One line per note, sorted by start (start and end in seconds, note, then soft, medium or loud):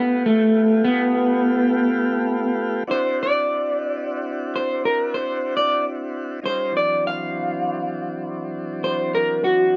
0.00 2.84 A3 medium
0.00 0.22 B3 medium
0.00 2.83 B3 medium
0.00 2.84 F4 medium
0.00 2.83 G4 medium
0.26 0.81 A3 medium
0.85 2.56 B3 loud
2.87 6.40 C4 medium
2.87 6.40 D4 medium
2.87 6.40 E4 medium
2.87 6.40 F#4 medium
2.87 3.18 C5 loud
3.23 4.49 D5 medium
4.56 4.82 C5 medium
4.85 5.11 A#4 medium
5.14 5.55 C5 medium
5.57 5.84 D5 loud
6.42 6.73 G3 medium
6.42 6.73 C#4 medium
6.42 6.72 D#4 medium
6.42 6.73 F4 medium
6.46 6.73 C5 loud
6.72 9.77 E3 medium
6.72 9.77 F#3 medium
6.72 9.77 C4 medium
6.72 9.77 D4 medium
6.77 7.04 D5 medium
7.07 8.80 F5 loud
8.84 9.12 C5 medium
9.15 9.42 A#4 loud
9.44 9.77 F#4 loud